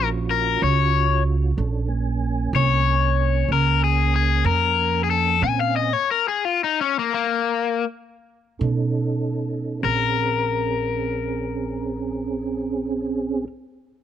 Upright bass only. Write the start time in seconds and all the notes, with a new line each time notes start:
Already playing: A#1
0.62 C#2
1.58 A#1
2.53 C2
3.48 C#2
4.44 F2
5.42 A#2
8.61 B2
9.83 A#1